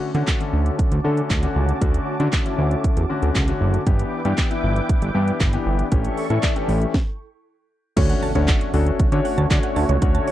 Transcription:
Already playing: C#4 F#4 A5 D6
0.14 D3 A3 C#4 F#4, closed hi-hat
0.27 kick, clap, closed hi-hat
0.40 D3 A3 C#4 A4, closed hi-hat
0.53 D2
0.66 closed hi-hat
0.79 kick, closed hi-hat
0.92 D2, closed hi-hat
1.04 D3 A3 C#4 A4
1.17 closed hi-hat
1.30 D2, kick, clap, closed hi-hat
1.43 D3 A3 C#4 F#4, closed hi-hat
1.56 C#2
1.69 closed hi-hat
1.81 D2 D3 A3 C#4 F#4, kick, closed hi-hat
1.94 closed hi-hat
2.19 D3 A3 C#4 F#4, closed hi-hat
2.33 kick, clap, closed hi-hat
2.45 D3 A3 C#4 E4, closed hi-hat
2.58 D2
2.71 closed hi-hat
2.84 kick, closed hi-hat
2.97 E2, closed hi-hat
3.09 D3 A3 C#4 F#4
3.22 D2, closed hi-hat
3.35 C#2, kick, clap, closed hi-hat
3.48 D3 A3 C#4 F#4, closed hi-hat
3.61 F#1
3.74 closed hi-hat
3.86 G1 E3 B3 D4 E4 G4 B4 G5 D6, kick, closed hi-hat, swell
3.99 closed hi-hat
4.25 G2 E3 B3 D4 G4, closed hi-hat
4.38 kick, clap, closed hi-hat
4.50 E3 B3 D4 E4, closed hi-hat
4.63 G1
4.76 closed hi-hat
4.89 kick, closed hi-hat
5.02 G1, closed hi-hat
5.14 G2 E3 B3 D4 G4
5.28 closed hi-hat
5.40 G1, kick, clap, closed hi-hat
5.53 E3 B3 D4 G4, closed hi-hat
5.66 G1
5.79 closed hi-hat
5.91 A1 E3 A3 C#4 G4 A4 C#6, kick, closed hi-hat
6.05 closed hi-hat
6.17 open hi-hat
6.30 A2 E3 A3 C#4 E4, closed hi-hat
6.43 kick, clap, closed hi-hat
6.56 E3 A3 C#4 G4, closed hi-hat
6.68 A1, open hi-hat
6.82 closed hi-hat
6.94 kick, snare
7.96 D2 D3 A3 C#4 D4 F#4 C#5, kick, closed hi-hat, crash, impact
8.10 F#5, closed hi-hat
8.23 A5, open hi-hat
8.35 D2 A3 C#4 D4 F#4 C#5, closed hi-hat
8.48 F#5, kick, clap, closed hi-hat
8.61 closed hi-hat
8.74 D2 A3 C#4 D4 F#4 A4, open hi-hat
8.87 closed hi-hat
8.99 D3, kick, closed hi-hat
9.12 D3 A3 C#4 D4 F#4 C#5, closed hi-hat
9.25 F#5, open hi-hat
9.38 D2 A5, closed hi-hat
9.50 D3 A3 C#4 D4 F#4 C#5, kick, clap, closed hi-hat
9.63 F#5, closed hi-hat
9.76 D2 A5, open hi-hat
9.89 C#2 C#5, closed hi-hat
10.02 D2 A3 C#4 D4 F#4 C#5 F#5, kick, closed hi-hat
10.15 A5, closed hi-hat
10.28 C#5, open hi-hat

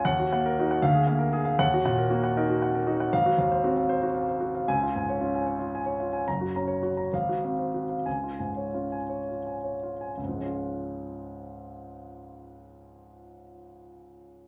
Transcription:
0.05 D#2 F#5
0.20 F#4
0.32 A#3 F#5
0.46 A#4
0.59 D#4 F#4
0.71 F#5
0.82 D2 F5
0.94 G#4
1.07 A#3 F5
1.19 A#4
1.33 G#4
1.45 F5
1.59 D#2 F#5
1.74 F#4
1.85 A#2 F#5
1.98 A#4
2.10 A#3 F#4
2.24 F#5
2.37 D#4 A#4
2.50 F#4
2.62 F#5
2.75 A#4
2.87 D#4 F#4
3.00 F#5
3.13 G#1 F5
3.26 F#4
3.38 D#2
3.51 C5
3.64 C4 F#4
3.77 F5
3.89 C5
4.03 F#4
4.15 F5
4.28 C5
4.40 F#4
4.55 F5
4.68 C#2 G#5
4.83 F4
4.95 G#2 G#5
5.09 C#5
5.21 C#4 F4
5.35 G#5
5.46 C#5
5.59 F4
5.75 G#5
5.86 C#5
6.00 F4
6.13 G#5
6.28 F#1 A#5
6.41 F#4
6.56 C#4 A#5
6.68 C#5
6.83 F#4
6.97 A#5
7.13 G#1 F5
7.29 F#4
7.45 C4
7.59 C5
7.74 F#4
7.89 F5
8.06 C#2 G#5
8.23 F4
8.39 G#2 G#5
8.57 C#5
8.74 C#4 F4
8.92 G#5
9.09 C#5
9.28 F4
9.46 G#5
9.64 C#5
9.83 F4
10.01 G#5
10.17 C#2
10.23 G#2
10.29 F3
10.35 G#3
10.40 C#4
10.46 F4

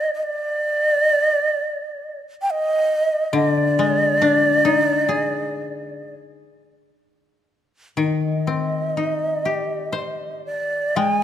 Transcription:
Already playing: D5
0.14 D#5
0.23 D5
2.42 G5
2.50 D#5
3.33 D3 D#5
3.46 D5
3.79 G#3
4.22 D4
4.65 D#4
5.09 G#4
7.97 D#3 D#5
8.47 C4
8.97 D#4
9.45 G4
9.93 C5
10.46 D5
10.96 G#3 G5
11.11 G#5

